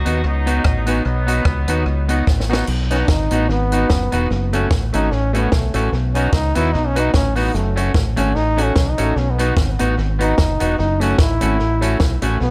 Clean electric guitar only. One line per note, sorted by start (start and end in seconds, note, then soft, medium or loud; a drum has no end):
0.05 0.20 B3 medium
0.05 0.21 D#4 medium
0.05 0.21 F#4 medium
0.46 0.61 B3 medium
0.46 0.61 D#4 medium
0.46 0.62 F#4 medium
0.64 muted clean electric guitar stroke soft
0.86 1.01 B3 medium
0.86 1.02 D#4 medium
0.86 1.02 F#4 medium
1.27 1.42 B3 medium
1.27 1.42 D#4 medium
1.27 1.43 F#4 medium
1.68 1.83 B3 medium
1.68 1.83 D#4 medium
1.68 1.84 F#4 medium
2.09 2.23 B3 medium
2.09 2.24 D#4 medium
2.09 2.24 F#4 medium
2.50 2.64 B3 medium
2.50 2.65 D#4 medium
2.50 2.65 F#4 medium
2.91 3.05 B3 medium
2.91 3.06 D#4 medium
2.91 3.06 F#4 medium
3.31 3.46 B3 medium
3.31 3.46 D#4 medium
3.31 3.47 F#4 medium
3.72 3.86 B3 medium
3.72 3.87 D#4 medium
3.72 3.87 F#4 medium
4.12 4.27 B3 medium
4.12 4.27 D#4 medium
4.12 4.27 F#4 loud
4.53 4.67 A3 medium
4.53 4.68 C#4 loud
4.53 4.68 F#4 medium
4.94 5.08 A3 medium
4.94 5.09 C#4 medium
4.94 5.09 F#4 medium
5.34 5.49 A3 medium
5.34 5.49 C#4 medium
5.34 5.49 F#4 medium
5.74 5.89 A3 medium
5.74 5.89 C#4 medium
5.74 5.90 F#4 loud
6.15 6.30 B3 medium
6.15 6.30 D#4 medium
6.15 6.30 F#4 medium
6.55 6.70 B3 medium
6.55 6.70 D#4 medium
6.55 6.71 F#4 loud
6.96 7.10 B3 medium
6.96 7.11 D#4 medium
6.96 7.11 F#4 loud
7.36 7.51 B3 medium
7.36 7.51 D#4 medium
7.36 7.51 F#4 medium
7.76 7.91 A3 medium
7.76 7.91 C#4 medium
7.76 7.92 F#4 medium
8.16 8.31 A3 medium
8.16 8.32 C#4 loud
8.16 8.32 F#4 medium
8.57 8.72 A3 medium
8.57 8.72 C#4 loud
8.57 8.73 F#4 medium
8.98 9.13 A3 medium
8.98 9.13 C#4 medium
8.98 9.13 F#4 medium
9.39 9.53 B3 medium
9.39 9.54 D#4 medium
9.39 9.54 F#4 loud
9.79 9.94 B3 medium
9.79 9.94 D#4 medium
9.79 9.95 F#4 loud
10.19 10.34 B3 medium
10.19 10.34 D#4 medium
10.19 10.35 F#4 medium
10.60 10.75 B3 medium
10.60 10.75 D#4 medium
10.60 10.76 F#4 medium
11.01 11.16 A3 medium
11.01 11.16 C#4 loud
11.01 11.16 F#4 medium
11.41 11.56 A3 medium
11.41 11.57 C#4 medium
11.41 11.57 F#4 medium
11.82 11.96 A3 medium
11.82 11.97 C#4 medium
11.82 11.97 F#4 medium
12.22 12.37 A3 medium
12.22 12.38 C#4 medium
12.22 12.38 F#4 medium